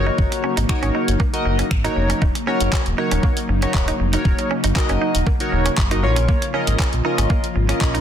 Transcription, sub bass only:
Already playing: F#1
0.18 F#1
0.57 G#1
0.83 G#1
1.08 F#1
1.45 F#1
1.71 G#1
1.96 F1
2.22 D#1
2.61 F#1
2.86 D#1
3.11 D#1
3.49 F#1
3.74 D#1
4.00 F1
4.25 D#1
4.64 F#1
4.89 F#1
5.15 D#1
5.52 D#1
5.78 F#1
6.03 A#1
6.67 G#1
6.93 A#1
7.18 G#1
7.56 G#1
7.81 A#1

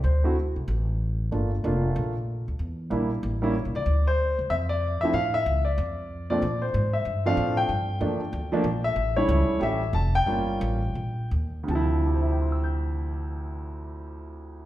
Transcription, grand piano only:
0.04 C5
0.24 A3 C4 E4 F#4
1.31 A3 A#3 D4 F4
1.64 A3 A#3 D4 F4
2.90 G3 A#3 D4 E4
3.42 G3 A#3 C#4 E4
3.76 D5
4.07 C5
4.50 E5
4.69 D5
5.01 F3 A3 C4 E4 E5
5.14 F5
5.34 E5
5.65 D5
6.30 A#2 F3 A3 C4 D4 D5
6.62 C5
6.93 E5
7.25 F3 A3 C4 D4 F5
7.57 G5
8.01 F3 A3 A#3 D4
8.52 F3 A3 A#3 D4
8.84 E5
9.16 G3 A3 C#4 E4 C#5
9.60 G3 A3 C#4 G4 E5
9.95 A5
10.15 G5
10.26 G3 A#3 C#4 F4
11.63 D2
11.67 C3 F3 A5
11.75 E4
12.07 G4
12.14 C5
12.22 E5
12.31 G5
12.41 C6
12.52 E6
12.64 G6

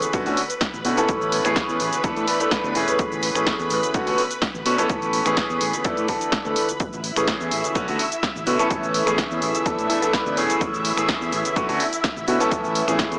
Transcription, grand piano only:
Already playing: E3 A3 B3 C#4 G#4
0.13 D3 A3 B3 C#4 F#4
0.26 D3 A3 B3 C#4 F#4
0.85 D3 A3 B3 C#4 F#4
0.97 E3 A3 B3 C#4 A4
1.44 E3 A3 B3 C#4 G#4
2.03 E3 A3 B3 D4 A4
2.28 E3 A3 B3 D4 A4
2.40 E3 A3 B3 D4 A4
2.51 E3 B3 D4 B4
2.75 E3 A3 B3 C#4 G#4
3.35 E3 A3 B3 C#4 G#4
3.94 D3 A3 B3 C#4 F#4
4.07 D3 A3 B3 C#4 F#4
4.66 D3 A3 B3 C#4 F#4
4.78 E3 A3 B3 C#4 A4
5.25 E3 A3 B3 C#4 G#4
5.85 E3 A3 B3 D4 A4
6.08 E3 A3 B3 D4 A4
6.45 E3 A3 B3 D4 A4
7.16 E3 A3 B3 C#4 G#4
7.75 D3 A3 B3 C#4 F#4
7.88 D3 A3 B3 C#4 F#4
8.46 D3 A3 B3 C#4 F#4
8.59 E3 A3 B3 C#4 A4
9.06 E3 A3 B3 C#4 G#4
9.65 E3 A3 B3 D4 A4
9.89 E3 A3 B3 D4 A4
10.02 E3 A3 B3 D4 A4
10.13 E3 A3 B3 D4 B4
10.36 E3 A3 B3 C#4 G#4
10.97 E3 A3 B3 C#4 G#4
11.56 D3 A3 B3 C#4 F#4
11.68 D3 A3 B3 C#4 F#4
12.27 D3 A3 B3 C#4 F#4
12.40 E3 A3 B3 C#4 A4
12.87 E3 A3 B3 C#4 G#4

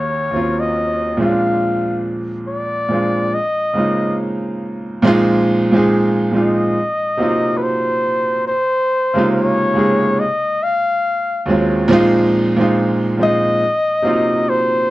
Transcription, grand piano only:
Already playing: D#2 F#3 A#3 C4 C#4 F4
0.31 D#2 F#3 A#3 C4
0.35 C#4 F4
1.17 A#2 F3 G#3 C4
1.21 C#4 F4
1.28 D4
2.88 A#2 F3 G#3 C4
2.93 D4 F4
3.73 C#3 G#3 A#3 C4
3.78 D#4 F4
5.02 A#2 F3 G#3 C4
5.06 D#4 F4
5.71 A#2 F3 G#3 C4 D#4
5.76 G#4
6.31 A#2 F3 G#3 C4 D#4
6.36 F4
7.17 C3 F#3 A#3 C4
7.21 D#4 F4
9.14 C3 C#3 G#3 A#3
9.18 D#4 F4
9.74 C3 C#3 G#3 A#3 D#4
9.79 G#4
11.46 D#2 F#3 G#3 C4 C#4
11.51 F4
11.88 A#2 F3 G#3 C4
11.92 D#4 F4
12.56 A#2 F3 G#3 C4
12.61 D#4 F4
13.17 A#2 F3 G#3 C4 D#4
13.22 F4
14.02 C3 F#3 A#3 C4
14.06 D#4 F4

